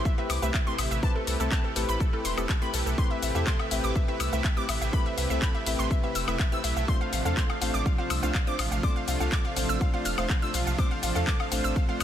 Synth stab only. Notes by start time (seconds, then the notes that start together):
Already playing: A3 C4 E4 G4 B4
0.18 A3 C4 E4 G4 B4
0.42 A3 C4 E4 G4 B4
0.67 A3 C4 E4 G4 B4
1.03 A3 C4 E4 G4 B4
1.40 A3 C4 E4 G4 A4
1.76 A3 C4 E4 G4 B4
2.13 A3 C4 E4 G4 B4
2.37 A3 C4 E4 G4 B4
2.62 A3 C4 E4 G4 B4
2.98 A3 C4 E4 G4 B4
3.35 A3 C4 E4 G4 A4
3.71 A3 C4 E4 G4 B4
4.08 A3 C4 E4 G4 B4
4.33 A3 C4 E4 G4 B4
4.57 A3 C4 E4 G4 B4
4.93 A3 C4 E4 G4 B4
5.30 A3 C4 E4 G4 A4
5.66 A3 C4 E4 G4 B4
6.03 A3 C4 E4 G4 B4
6.28 A3 C4 E4 G4 B4
6.52 A3 C4 E4 G4 B4
6.88 A3 C4 D4 F4 C5
7.25 A3 C4 D4 F4 A4
7.61 A3 C4 D4 F4 C5
7.98 A3 C4 D4 F4 C5
8.23 A3 C4 D4 F4 C5
8.47 A3 C4 D4 F4 C5
8.83 A3 C4 D4 F4 C5
9.20 A3 C4 D4 F4 A4
9.57 A3 C4 D4 F4 C5
9.94 A3 C4 D4 F4 C5
10.18 A3 C4 D4 F4 C5
10.42 A3 C4 D4 F4 C5
10.78 A3 C4 D4 F4 C5
11.15 A3 C4 D4 F4 A4
11.52 A3 C4 D4 F4 C5
11.89 A3 C4 D4 F4 C5